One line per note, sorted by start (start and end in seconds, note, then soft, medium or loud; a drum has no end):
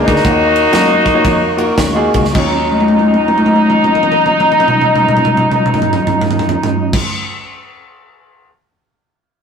0.00 0.20 F3 medium
0.00 0.20 G#3 medium
0.00 0.14 A#3 medium
0.00 0.14 D4 medium
0.00 0.14 F4 medium
0.00 0.14 G#4 medium
0.00 0.24 G#4 medium
0.00 0.24 B4 medium
0.00 0.15 D5 medium
0.00 0.24 D5 medium
0.00 0.24 A#5 medium
0.06 0.22 D2 loud
0.06 2.10 A#3 medium
0.06 2.13 D#4 loud
0.06 2.10 F#4 medium
0.06 kick loud
0.06 ride medium
0.16 snare soft
0.24 0.66 D#2 loud
0.24 1.01 D#3 medium
0.24 0.59 A#3 medium
0.24 0.59 D#4 medium
0.24 0.60 F4 medium
0.24 0.60 F#4 medium
0.24 2.34 F#4 medium
0.24 0.60 C#5 medium
0.24 2.34 D#5 medium
0.24 2.34 F5 medium
0.24 2.34 C#6 medium
0.24 kick loud
0.24 ride medium
0.56 ride medium
0.71 1.17 F#2 loud
0.71 1.02 A#3 medium
0.71 1.03 D#4 medium
0.71 1.03 F4 medium
0.71 1.03 F#4 medium
0.71 1.03 A#4 loud
0.71 snare loud
0.71 ride medium
1.06 kick loud
1.06 ride soft
1.14 1.38 A#3 medium
1.14 1.38 D#4 medium
1.14 1.38 F4 medium
1.14 1.39 F#4 medium
1.14 1.39 C#5 medium
1.25 1.70 F2 medium
1.25 kick loud
1.25 ride medium
1.57 1.76 A#3 medium
1.57 1.76 D#4 medium
1.57 1.76 F4 medium
1.57 1.77 F#4 medium
1.57 1.77 A#4 loud
1.57 ride medium
1.78 2.08 D#2 loud
1.78 kick medium
1.78 snare loud
1.78 ride medium
1.94 2.22 A#3 medium
1.94 2.22 D#4 medium
1.94 2.23 F4 medium
1.94 2.23 F#4 medium
1.94 2.23 G#4 loud
2.14 2.32 C#2 loud
2.14 kick medium
2.14 ride medium
2.25 snare soft
2.31 6.98 D#2 medium
2.31 6.98 D#2 loud
2.31 6.96 F#3 medium
2.31 6.98 F#3 medium
2.31 6.98 C#4 medium
2.31 6.97 D#4 medium
2.31 6.98 D#4 loud
2.31 6.98 F4 medium
2.31 6.98 D#5 medium
2.31 kick loud
2.31 crash loud
2.36 6.98 F4 medium
2.36 7.00 C#5 medium
2.72 high tom soft
2.80 high tom soft
2.88 high tom medium
2.99 high tom medium
3.14 high tom medium
3.28 high tom medium
3.38 high tom medium
3.46 high tom medium
3.56 high tom medium
3.70 mid tom medium
3.84 mid tom medium
3.95 mid tom medium
4.03 mid tom medium
4.12 mid tom medium
4.26 mid tom medium
4.40 mid tom medium
4.52 mid tom medium
4.60 mid tom medium
4.68 mid tom medium
4.81 mid tom medium
4.96 mid tom medium
5.09 mid tom medium
5.17 mid tom medium
5.25 mid tom medium
5.37 mid tom medium
5.51 mid tom medium
5.66 mid tom medium
5.74 floor tom medium
5.82 floor tom medium
5.93 floor tom medium
6.07 floor tom medium
6.22 floor tom medium
6.31 floor tom medium
6.39 floor tom medium
6.49 floor tom medium
6.63 floor tom medium
6.93 kick loud
6.93 crash loud